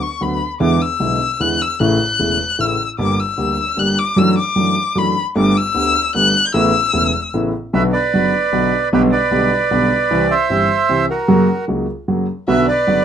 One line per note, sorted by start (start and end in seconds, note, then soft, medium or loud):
0.03 0.24 C#6 medium
0.21 0.38 D2 medium
0.21 0.38 D3 medium
0.21 0.38 F#3 soft
0.21 0.38 B3 soft
0.21 0.38 F#4 medium
0.21 0.52 B5 medium
0.60 0.77 E2 medium
0.60 0.77 D3 medium
0.60 0.77 E3 medium
0.60 0.77 G#3 medium
0.60 0.77 B3 medium
0.60 0.77 E4 medium
0.60 0.83 D6 medium
0.81 1.42 E6 medium
1.00 1.17 B1 medium
1.00 1.17 B2 medium
1.00 1.17 D3 medium
1.00 1.17 G#3 soft
1.00 1.17 B3 soft
1.00 1.17 E4 medium
1.40 1.57 E2 medium
1.40 1.56 D3 soft
1.40 1.57 E3 medium
1.40 1.57 G#3 soft
1.40 1.57 B3 soft
1.40 1.57 E4 soft
1.40 1.63 F#6 loud
1.61 1.80 E6 medium
1.80 1.96 A1 medium
1.80 1.97 A2 medium
1.80 1.96 C#3 medium
1.80 1.97 E3 medium
1.80 1.97 A3 medium
1.80 1.97 E4 medium
1.80 2.62 F#6 loud
2.19 2.36 E1 medium
2.19 2.36 E2 medium
2.19 2.36 C#3 soft
2.19 2.36 E3 soft
2.19 2.36 A3 soft
2.19 2.36 E4 medium
2.59 2.76 A1 medium
2.59 2.76 A2 medium
2.59 2.76 C#3 soft
2.59 2.76 E3 soft
2.59 2.76 A3 soft
2.59 2.76 E4 medium
2.59 2.90 E6 medium
2.98 3.15 G1 medium
2.98 3.16 G2 medium
2.98 3.15 D3 medium
2.98 3.15 G3 medium
2.98 3.15 A#3 medium
2.98 3.16 G4 medium
2.98 3.21 D6 medium
3.20 3.81 E6 medium
3.38 3.55 D2 medium
3.38 3.55 D3 medium
3.38 3.55 G3 soft
3.38 3.55 A#3 soft
3.38 3.55 G4 medium
3.77 3.94 G1 medium
3.77 3.94 G2 medium
3.77 3.94 D3 soft
3.77 3.94 G3 soft
3.77 3.94 A#3 soft
3.77 3.95 G4 medium
3.77 4.01 F#6 loud
3.99 4.20 D6 loud
4.16 4.34 F#2 medium
4.16 4.34 E3 medium
4.16 4.34 F#3 medium
4.16 4.34 A3 medium
4.16 4.34 D4 medium
4.16 4.34 F#4 medium
4.16 4.38 E6 medium
4.38 5.00 D6 loud
4.56 4.73 F#2 medium
4.56 4.73 E3 soft
4.56 4.73 F#3 medium
4.56 4.73 A3 soft
4.56 4.73 D4 soft
4.56 4.73 F#4 medium
4.95 5.13 F#2 medium
4.95 5.13 E3 soft
4.95 5.13 F#3 medium
4.95 5.13 A3 soft
4.95 5.13 D4 soft
4.95 5.13 F#4 medium
4.95 5.27 B5 medium
5.35 5.52 G1 medium
5.35 5.52 G2 medium
5.35 5.52 D3 medium
5.35 5.52 A3 medium
5.35 5.52 B3 medium
5.35 5.52 G4 medium
5.35 5.58 D6 loud
5.57 6.15 E6 loud
5.74 5.92 D2 medium
5.74 5.92 D3 medium
5.74 5.92 A3 soft
5.74 5.92 B3 soft
5.74 5.92 G4 medium
6.14 6.32 G1 medium
6.14 6.32 G2 medium
6.14 6.31 D3 medium
6.14 6.31 A3 soft
6.14 6.31 B3 soft
6.14 6.32 G4 medium
6.14 6.47 F#6 loud
6.46 6.55 G6 loud
6.54 6.71 A1 medium
6.54 6.71 A2 medium
6.54 6.71 C#3 medium
6.54 6.71 A3 medium
6.54 6.71 B3 medium
6.54 6.71 E4 medium
6.54 7.30 E6 loud
6.93 7.10 E1 medium
6.93 7.10 E2 medium
6.93 7.10 C#3 medium
6.93 7.10 A3 soft
6.93 7.10 B3 medium
6.93 7.11 E4 medium
7.34 7.51 A1 medium
7.34 7.51 A2 medium
7.34 7.51 C#3 medium
7.34 7.51 A3 soft
7.34 7.51 B3 medium
7.34 7.51 E4 medium
7.73 7.90 B1 medium
7.73 7.90 B2 medium
7.73 7.90 D3 medium
7.73 7.90 F#3 medium
7.73 7.91 B3 medium
7.73 7.91 F#4 medium
7.73 7.83 B4 medium
7.73 7.83 E5 loud
7.93 8.89 B4 medium
7.93 8.88 D5 loud
8.14 8.30 F#1 medium
8.14 8.30 F#2 medium
8.14 8.30 D3 soft
8.14 8.30 F#3 soft
8.14 8.31 B3 soft
8.14 8.31 F#4 medium
8.53 8.70 B1 medium
8.53 8.70 B2 medium
8.53 8.69 D3 medium
8.53 8.69 F#3 soft
8.53 8.70 B3 soft
8.53 8.70 F#4 medium
8.93 9.09 B1 medium
8.93 9.09 B2 medium
8.93 9.09 D3 medium
8.93 9.09 G3 medium
8.93 9.09 B3 medium
8.93 9.10 G4 medium
8.93 9.02 G4 medium
8.93 9.02 B4 loud
9.12 10.27 B4 medium
9.12 10.34 D5 loud
9.31 9.48 B1 medium
9.31 9.48 B2 medium
9.31 9.48 D3 medium
9.31 9.48 G3 medium
9.31 9.49 B3 soft
9.31 9.49 G4 medium
9.71 9.88 B1 medium
9.71 9.88 B2 medium
9.71 9.88 D3 medium
9.71 9.88 G3 medium
9.71 9.88 B3 medium
9.71 9.88 G4 medium
10.11 10.27 C2 medium
10.11 10.27 C3 medium
10.11 10.27 E3 medium
10.11 10.27 G3 medium
10.11 10.27 C4 medium
10.11 10.28 G4 medium
10.31 11.06 C5 medium
10.31 11.06 E5 loud
10.50 10.67 G1 medium
10.50 10.67 G2 medium
10.50 10.66 E3 medium
10.50 10.67 G3 medium
10.50 10.67 C4 soft
10.50 10.67 G4 medium
10.89 11.06 C2 medium
10.89 11.06 C3 medium
10.89 11.06 E3 medium
10.89 11.06 G3 soft
10.89 11.06 C4 soft
10.89 11.06 G4 medium
11.10 11.65 F#4 medium
11.10 11.65 A#4 medium
11.28 11.45 F#2 medium
11.28 11.45 C#3 medium
11.28 11.45 F#3 medium
11.28 11.45 A#3 medium
11.28 11.46 F#4 medium
11.68 11.85 C#2 medium
11.68 11.85 C#3 medium
11.68 11.85 F#3 soft
11.68 11.85 A#3 soft
11.68 11.85 F#4 medium
12.08 12.25 F#2 medium
12.08 12.25 C#3 soft
12.08 12.25 F#3 medium
12.08 12.25 A#3 soft
12.08 12.25 F#4 medium
12.48 12.65 B1 medium
12.48 12.65 B2 medium
12.48 12.65 D3 medium
12.48 12.65 F#3 medium
12.48 12.65 B3 medium
12.48 12.65 F#4 medium
12.48 12.67 B4 medium
12.48 12.66 E5 medium
12.48 12.67 E5 loud
12.68 13.05 B4 medium
12.68 13.05 D5 loud
12.68 13.05 D5 medium
12.87 13.04 F#1 medium
12.87 13.04 F#2 medium
12.87 13.04 D3 soft
12.87 13.04 F#3 soft
12.87 13.04 B3 soft
12.87 13.05 F#4 medium